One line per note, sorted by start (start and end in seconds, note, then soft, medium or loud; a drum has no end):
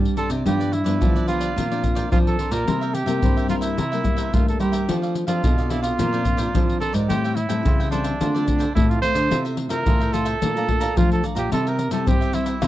0.00 0.43 G2 soft
0.00 0.14 G3 medium
0.00 0.26 G3 soft
0.00 0.26 C4 soft
0.00 0.26 D4 medium
0.00 0.16 G4 medium
0.00 0.16 C5 medium
0.00 0.16 D5 medium
0.05 pandeiro soft
0.05 shaker soft
0.17 0.30 D4 soft
0.17 0.31 G4 soft
0.17 0.30 A4 medium
0.17 0.29 C5 soft
0.17 0.29 D5 soft
0.17 pandeiro soft
0.17 shaker medium
0.30 0.42 C3 medium
0.30 0.45 G4 soft
0.30 0.44 C5 medium
0.30 0.44 D5 medium
0.30 pandeiro medium
0.30 shaker medium
0.45 0.98 G2 soft
0.45 0.81 G2 medium
0.45 0.71 F3 soft
0.45 0.72 B3 soft
0.45 0.72 D4 medium
0.45 0.59 F4 soft
0.45 0.74 G4 medium
0.45 0.59 G4 soft
0.45 0.59 B4 soft
0.45 0.59 D5 soft
0.45 pandeiro medium
0.45 shaker medium
0.45 surdo soft
0.60 0.72 G4 soft
0.60 0.72 B4 medium
0.60 0.72 D5 medium
0.60 pandeiro soft
0.60 shaker soft
0.72 1.28 E4 medium
0.72 muted cavaquinho stroke soft
0.72 pandeiro soft
0.72 shaker medium
0.84 0.98 G2 medium
0.84 1.23 F3 soft
0.84 1.23 B3 medium
0.84 1.23 D4 medium
0.84 1.00 G4 soft
0.84 0.99 B4 medium
0.84 0.98 D5 medium
0.84 pandeiro medium
0.84 shaker medium
1.00 1.54 D3 medium
1.00 1.48 F3 medium
1.00 1.14 F4 soft
1.00 1.14 G4 soft
1.00 1.14 B4 soft
1.00 1.14 D5 soft
1.00 pandeiro medium
1.00 shaker medium
1.00 surdo medium
1.16 1.27 G4 soft
1.16 1.28 B4 medium
1.16 1.28 D5 medium
1.16 pandeiro soft
1.16 shaker soft
1.27 1.53 F3 soft
1.27 1.54 B3 soft
1.27 1.54 D4 medium
1.27 1.41 F4 medium
1.27 2.08 F4 medium
1.27 1.41 G4 medium
1.27 1.40 B4 medium
1.27 1.39 D5 medium
1.27 pandeiro medium
1.27 shaker medium
1.40 1.55 G4 medium
1.40 1.55 B4 medium
1.40 1.54 D5 medium
1.40 pandeiro medium
1.40 shaker medium
1.56 2.09 A#2 soft
1.56 2.03 A#2 medium
1.56 1.66 F3 soft
1.56 1.66 C4 soft
1.56 1.69 D4 soft
1.56 1.66 D4 medium
1.56 1.70 A#4 soft
1.56 1.70 C5 soft
1.56 1.70 D5 soft
1.56 pandeiro medium
1.56 shaker medium
1.56 surdo medium
1.71 2.08 F3 soft
1.71 2.08 C4 soft
1.71 2.08 D4 medium
1.71 1.83 A#4 soft
1.71 1.83 C5 medium
1.71 1.83 D5 medium
1.71 pandeiro soft
1.71 shaker soft
1.83 muted cavaquinho stroke soft
1.83 pandeiro soft
1.83 shaker medium
1.83 surdo medium
1.95 2.38 A#4 medium
1.95 2.38 C5 medium
1.95 2.37 D5 medium
1.95 pandeiro medium
1.95 shaker medium
2.11 2.47 F3 medium
2.11 2.35 F3 medium
2.11 2.48 C4 medium
2.11 2.48 D4 medium
2.11 2.18 F4 medium
2.11 pandeiro medium
2.11 shaker medium
2.11 surdo medium
2.27 2.53 A4 medium
2.27 pandeiro soft
2.27 shaker soft
2.39 2.52 D4 soft
2.39 2.52 A#4 soft
2.39 2.52 C5 soft
2.39 2.50 D5 soft
2.39 pandeiro soft
2.51 2.64 A#2 medium
2.51 2.95 A#4 medium
2.51 2.66 A#4 soft
2.51 2.66 C5 medium
2.51 2.65 D5 medium
2.51 pandeiro medium
2.51 shaker medium
2.67 3.20 C3 soft
2.67 3.03 C3 medium
2.67 2.93 G3 soft
2.67 2.93 A#3 soft
2.67 2.80 E4 soft
2.67 2.93 E4 soft
2.67 2.80 A#4 soft
2.67 2.81 C5 soft
2.67 2.80 E5 soft
2.67 pandeiro medium
2.67 shaker medium
2.67 surdo medium
2.81 2.93 A#4 soft
2.81 2.93 C5 medium
2.81 2.94 E5 medium
2.81 pandeiro soft
2.81 shaker soft
2.94 3.49 G4 medium
2.94 muted cavaquinho stroke soft
2.94 pandeiro soft
2.94 shaker medium
3.06 3.19 C3 medium
3.06 3.44 G3 medium
3.06 3.45 A#3 medium
3.06 3.45 E4 medium
3.06 3.21 A#4 soft
3.06 3.21 C5 medium
3.06 3.20 E5 medium
3.06 pandeiro medium
3.06 shaker medium
3.22 3.75 G2 medium
3.22 3.69 C4 medium
3.22 3.35 E4 soft
3.22 3.35 A#4 soft
3.22 3.36 C5 soft
3.22 3.35 E5 soft
3.22 pandeiro medium
3.22 shaker medium
3.22 surdo medium
3.37 3.48 A#4 soft
3.37 3.49 C5 medium
3.37 3.49 E5 medium
3.37 pandeiro soft
3.37 shaker soft
3.48 3.75 G3 soft
3.48 3.75 A#3 soft
3.48 3.62 E4 medium
3.48 3.76 E4 medium
3.48 3.56 F4 medium
3.48 3.62 A#4 medium
3.48 3.61 C5 medium
3.48 3.60 E5 medium
3.48 pandeiro soft
3.48 shaker medium
3.61 4.35 E4 medium
3.61 3.76 A#4 soft
3.61 3.76 C5 medium
3.61 3.75 E5 medium
3.61 pandeiro medium
3.61 shaker medium
3.77 4.01 C3 medium
3.77 4.30 C3 soft
3.77 3.90 E4 soft
3.77 3.91 A#4 soft
3.77 3.91 C5 soft
3.77 3.90 E5 soft
3.77 pandeiro medium
3.77 shaker medium
3.77 surdo medium
3.92 4.01 G3 medium
3.92 4.02 A#3 medium
3.92 4.02 E4 medium
3.92 4.03 A#4 soft
3.92 4.04 C5 medium
3.92 4.04 E5 medium
3.92 pandeiro soft
3.92 shaker soft
4.04 4.28 G3 soft
4.04 4.30 A#3 medium
4.04 4.28 A#3 soft
4.04 4.28 E4 medium
4.04 muted cavaquinho stroke soft
4.04 pandeiro soft
4.04 shaker medium
4.04 surdo medium
4.16 4.59 A#4 medium
4.16 4.59 C5 medium
4.16 4.58 E5 medium
4.16 pandeiro medium
4.16 shaker medium
4.33 4.86 G2 soft
4.33 4.84 G3 soft
4.33 4.58 A3 medium
4.33 4.84 A#3 soft
4.33 4.84 E4 medium
4.33 4.47 F4 medium
4.33 pandeiro medium
4.33 shaker medium
4.33 surdo medium
4.48 4.60 A4 medium
4.48 pandeiro soft
4.48 shaker soft
4.59 4.85 G3 medium
4.59 4.73 E4 soft
4.59 5.00 G4 medium
4.59 4.73 A#4 soft
4.59 4.72 C5 soft
4.59 4.71 E5 soft
4.59 pandeiro soft
4.59 shaker medium
4.72 4.87 A#4 soft
4.72 4.86 C5 medium
4.72 4.86 E5 medium
4.72 pandeiro medium
4.72 shaker medium
4.88 5.41 F3 soft
4.88 5.24 F3 medium
4.88 5.26 C4 soft
4.88 5.01 D4 soft
4.88 5.26 D4 soft
4.88 5.01 A4 soft
4.88 5.26 A4 medium
4.88 5.02 D5 soft
4.88 5.01 F5 soft
4.88 pandeiro medium
4.88 shaker medium
4.88 surdo medium
5.02 5.14 A4 soft
5.02 5.15 D5 soft
5.02 5.15 F5 medium
5.02 pandeiro soft
5.02 shaker soft
5.15 muted cavaquinho stroke soft
5.15 pandeiro soft
5.15 shaker medium
5.27 5.40 F3 medium
5.27 5.66 C4 medium
5.27 5.66 D4 medium
5.27 5.72 F4 medium
5.27 5.66 A4 medium
5.27 5.42 A4 soft
5.27 5.42 D5 medium
5.27 5.41 F5 medium
5.27 pandeiro medium
5.27 shaker medium
5.43 5.91 B2 medium
5.43 5.56 D4 soft
5.43 5.57 A4 soft
5.43 5.57 D5 soft
5.43 5.57 F5 soft
5.43 pandeiro medium
5.43 shaker medium
5.43 surdo medium
5.58 5.69 A4 medium
5.58 5.70 D5 medium
5.58 5.70 F5 medium
5.58 pandeiro soft
5.58 shaker soft
5.69 5.94 C4 soft
5.69 5.83 D4 soft
5.69 5.94 D4 soft
5.69 5.82 E4 medium
5.69 5.84 A4 medium
5.69 5.94 A4 soft
5.69 5.82 D5 medium
5.69 5.81 F5 medium
5.69 pandeiro medium
5.82 6.77 F4 medium
5.82 5.98 A4 soft
5.82 5.97 D5 medium
5.82 5.97 F5 medium
5.82 pandeiro medium
5.82 shaker medium
5.98 6.52 A#2 soft
5.98 6.46 A#2 medium
5.98 6.09 F3 soft
5.98 6.09 C4 soft
5.98 6.11 D4 soft
5.98 6.09 D4 soft
5.98 6.12 A#4 soft
5.98 6.12 C5 soft
5.98 6.11 D5 soft
5.98 pandeiro medium
5.98 shaker medium
5.98 surdo medium
6.12 6.23 F3 medium
6.12 6.23 C4 medium
6.12 6.23 D4 medium
6.12 6.24 A#4 soft
6.12 6.24 C5 medium
6.12 6.25 D5 medium
6.12 pandeiro soft
6.12 shaker soft
6.25 6.49 F3 soft
6.25 6.49 C4 soft
6.25 6.50 D4 medium
6.25 muted cavaquinho stroke soft
6.25 pandeiro soft
6.25 shaker medium
6.25 surdo medium
6.37 6.79 A#4 medium
6.37 6.80 C5 medium
6.37 6.79 D5 medium
6.37 pandeiro medium
6.37 shaker medium
6.54 7.07 F3 soft
6.54 6.78 F3 medium
6.54 6.90 C4 medium
6.54 6.90 D4 medium
6.54 pandeiro medium
6.54 shaker medium
6.54 surdo medium
6.69 pandeiro soft
6.69 shaker soft
6.80 6.94 D4 soft
6.80 6.93 A4 medium
6.80 6.94 A#4 soft
6.80 6.93 C5 soft
6.80 6.91 D5 soft
6.80 pandeiro soft
6.93 7.06 G#2 medium
6.93 7.08 A#4 soft
6.93 7.08 C5 medium
6.93 7.07 D5 medium
6.93 pandeiro medium
6.93 shaker medium
7.09 7.45 A2 medium
7.09 7.62 A2 soft
7.09 7.36 G3 soft
7.09 7.36 C4 soft
7.09 7.36 E4 medium
7.09 7.37 G4 medium
7.09 7.22 A4 soft
7.09 7.23 C5 soft
7.09 7.23 E5 soft
7.09 7.23 G5 medium
7.09 pandeiro medium
7.09 shaker medium
7.09 surdo medium
7.24 7.36 C5 medium
7.24 7.36 E5 medium
7.24 7.37 G5 medium
7.24 pandeiro soft
7.24 shaker soft
7.35 7.90 E4 medium
7.35 muted cavaquinho stroke soft
7.35 pandeiro medium
7.35 shaker medium
7.49 7.62 A2 medium
7.49 7.87 G3 medium
7.49 7.87 C4 medium
7.49 7.88 E4 medium
7.49 7.64 C5 medium
7.49 7.64 E5 medium
7.49 7.63 G5 medium
7.49 pandeiro medium
7.49 shaker medium
7.65 8.12 C#3 medium
7.65 8.18 E3 medium
7.65 7.78 A4 soft
7.65 7.78 C5 soft
7.65 7.79 E5 soft
7.65 7.79 G5 soft
7.65 pandeiro medium
7.65 shaker medium
7.65 surdo medium
7.80 7.91 C5 soft
7.80 7.92 E5 medium
7.80 7.92 G5 medium
7.80 pandeiro soft
7.80 shaker soft
7.91 8.15 G3 medium
7.91 8.16 C4 soft
7.91 8.71 D4 medium
7.91 8.16 E4 soft
7.91 8.05 A4 medium
7.91 8.05 C5 medium
7.91 8.04 E5 medium
7.91 8.03 G5 medium
7.91 pandeiro soft
7.91 shaker medium
8.04 8.19 C5 soft
8.04 8.18 E5 medium
8.04 8.18 G5 medium
8.04 pandeiro medium
8.04 shaker medium
8.20 8.73 D3 soft
8.20 8.68 D3 medium
8.20 8.29 A3 soft
8.20 8.29 C4 soft
8.20 8.33 F4 soft
8.20 8.29 F4 soft
8.20 8.34 A4 soft
8.20 8.34 C5 soft
8.20 8.33 D5 soft
8.20 pandeiro medium
8.20 shaker medium
8.20 surdo medium
8.35 8.44 A3 medium
8.35 8.44 C4 medium
8.35 8.45 F4 medium
8.35 8.46 A4 soft
8.35 8.46 C5 medium
8.35 8.46 D5 medium
8.35 pandeiro soft
8.35 shaker soft
8.46 8.64 A3 soft
8.46 8.64 C4 medium
8.46 8.64 F4 medium
8.46 muted cavaquinho stroke soft
8.46 pandeiro medium
8.46 shaker medium
8.46 surdo medium
8.58 9.02 A4 soft
8.58 9.01 C5 medium
8.58 9.01 D5 medium
8.58 pandeiro medium
8.58 shaker medium
8.75 9.28 A2 soft
8.75 9.00 A2 medium
8.75 9.11 A3 soft
8.75 9.11 C4 medium
8.75 8.91 E4 medium
8.75 9.12 F4 medium
8.75 pandeiro medium
8.75 shaker medium
8.75 surdo medium
8.90 9.01 F4 medium
8.90 pandeiro soft
8.90 shaker soft
9.01 9.15 F4 soft
9.01 9.15 A4 soft
9.01 9.42 C5 medium
9.01 9.14 C5 soft
9.01 9.13 D5 medium
9.01 pandeiro medium
9.01 shaker medium
9.14 9.28 D3 medium
9.14 9.30 A4 medium
9.14 9.29 C5 medium
9.14 9.29 D5 medium
9.14 pandeiro medium
9.14 shaker medium
9.30 9.66 C3 medium
9.30 9.84 C3 soft
9.30 9.68 A3 soft
9.30 9.68 E4 medium
9.30 9.43 F4 soft
9.30 9.69 F4 soft
9.30 9.44 A4 soft
9.30 9.44 C5 soft
9.30 9.43 E5 medium
9.30 pandeiro medium
9.30 shaker medium
9.30 surdo medium
9.45 9.56 A4 soft
9.45 9.57 C5 medium
9.45 9.57 E5 medium
9.45 pandeiro soft
9.45 shaker soft
9.57 muted cavaquinho stroke soft
9.57 pandeiro medium
9.69 9.83 C3 medium
9.69 10.09 E4 medium
9.69 10.09 F4 medium
9.69 9.85 A4 medium
9.69 10.14 A#4 medium
9.69 9.84 C5 medium
9.69 9.84 E5 medium
9.69 pandeiro medium
9.69 shaker medium
9.86 10.33 A2 medium
9.86 10.39 C3 medium
9.86 9.99 F4 soft
9.86 9.99 A4 soft
9.86 10.00 C5 soft
9.86 9.99 E5 soft
9.86 pandeiro medium
9.86 shaker medium
9.86 surdo medium
10.00 10.12 A4 soft
10.00 10.13 C5 medium
10.00 10.13 E5 medium
10.00 pandeiro soft
10.00 shaker soft
10.13 10.39 A3 soft
10.13 10.39 E4 medium
10.13 10.26 F4 medium
10.13 10.39 F4 medium
10.13 10.99 A4 medium
10.13 10.26 A4 medium
10.13 10.25 C5 medium
10.13 10.24 E5 medium
10.13 pandeiro medium
10.13 shaker medium
10.25 10.40 A4 medium
10.25 10.40 C5 medium
10.25 10.39 E5 medium
10.25 pandeiro medium
10.25 shaker medium
10.41 10.94 A#2 soft
10.41 10.89 A#2 medium
10.41 10.51 A3 soft
10.41 10.51 D4 soft
10.41 10.51 F4 medium
10.41 10.54 A4 soft
10.41 10.55 D5 soft
10.41 10.55 F5 soft
10.41 10.55 A#5 soft
10.41 pandeiro medium
10.41 shaker medium
10.41 surdo medium
10.56 10.65 A3 soft
10.56 10.66 D4 medium
10.56 10.66 F4 medium
10.56 10.67 D5 soft
10.56 10.68 F5 medium
10.56 10.68 A#5 medium
10.56 pandeiro soft
10.56 shaker soft
10.68 10.85 A3 medium
10.68 10.85 D4 medium
10.68 10.85 F4 medium
10.68 muted cavaquinho stroke soft
10.68 pandeiro soft
10.68 surdo medium
10.80 11.22 D5 medium
10.80 11.23 F5 medium
10.80 11.22 A#5 medium
10.80 pandeiro medium
10.80 shaker medium
10.97 11.20 F3 medium
10.97 11.50 F3 soft
10.97 11.33 A3 soft
10.97 11.33 D4 soft
10.97 11.11 F4 medium
10.97 11.33 F4 medium
10.97 pandeiro medium
10.97 shaker medium
10.97 surdo medium
11.12 11.24 A4 medium
11.12 pandeiro soft
11.12 shaker soft
11.23 11.36 A4 soft
11.23 11.36 D5 soft
11.23 11.35 F5 soft
11.23 11.34 A#5 soft
11.23 pandeiro soft
11.23 shaker medium
11.35 11.49 A#2 medium
11.35 11.51 G4 medium
11.35 11.51 D5 medium
11.35 11.50 F5 medium
11.35 11.50 A#5 medium
11.35 pandeiro medium
11.35 shaker medium
11.51 11.87 C3 medium
11.51 12.05 C3 soft
11.51 11.78 G3 soft
11.51 11.78 C4 soft
11.51 11.65 E4 soft
11.51 11.79 E4 medium
11.51 11.65 G4 soft
11.51 11.70 A4 medium
11.51 11.65 C5 soft
11.51 11.65 E5 medium
11.51 pandeiro medium
11.51 shaker medium
11.51 surdo medium
11.67 11.78 G4 medium
11.67 11.92 A#4 medium
11.67 11.78 C5 medium
11.67 11.79 E5 medium
11.67 pandeiro soft
11.67 shaker soft
11.79 muted cavaquinho stroke soft
11.79 pandeiro medium
11.79 shaker medium
11.91 12.04 C3 medium
11.91 12.06 G3 medium
11.91 12.30 C4 medium
11.91 12.30 E4 medium
11.91 12.06 G4 medium
11.91 12.09 A4 medium
11.91 12.06 C5 medium
11.91 12.05 E5 medium
11.91 pandeiro medium
11.91 shaker medium
12.06 12.32 G3 medium
12.06 12.54 C4 medium
12.06 12.20 E4 soft
12.06 12.20 G4 soft
12.06 12.36 G4 medium
12.06 12.21 C5 soft
12.06 12.20 E5 soft
12.06 pandeiro medium
12.06 shaker medium
12.06 surdo medium
12.21 12.33 G4 medium
12.21 12.33 C5 medium
12.21 12.34 E5 medium
12.21 pandeiro soft
12.21 shaker soft
12.33 12.68 G3 soft
12.33 12.68 C4 soft
12.33 12.47 E4 medium
12.33 12.68 E4 medium
12.33 12.47 G4 medium
12.33 12.46 C5 medium
12.33 12.45 E5 medium
12.33 pandeiro soft
12.33 shaker medium
12.46 12.61 G4 medium
12.46 12.61 C5 medium
12.46 12.60 E5 medium
12.46 pandeiro medium
12.46 shaker medium
12.62 12.68 C3 soft
12.62 12.68 C3 medium
12.62 12.68 E4 soft
12.62 12.68 G4 soft
12.62 12.68 C5 soft
12.62 12.68 E5 soft
12.62 pandeiro medium
12.62 tamborim medium
12.62 shaker medium
12.62 surdo medium